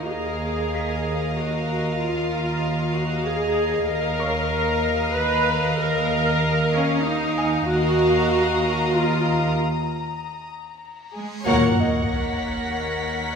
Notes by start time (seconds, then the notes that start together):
Already playing: D#4 C#6
0.09 D#2 G#4 A#4 D#5 F5
0.74 A#4 B6
1.36 F#4
2.00 F4
2.94 F#4
3.26 G#4
3.88 D#2 A#4 D#5 F5 D#6 F6
4.20 C#5 C#6
5.15 B4
5.78 A#4
5.99 E6
6.73 C#4 F5
7.04 D#4
7.38 G#5
7.67 D#2 F#4 A#4 D#5 F5 A#5 D#6
8.93 F4 A#5
9.57 reverse cymbal
11.13 G#3 G#4
11.45 D#2 A#2 F#3 A#3 A#4 C#5 F#5 A#6, sub drop
11.80 D#4 D#5
12.11 B6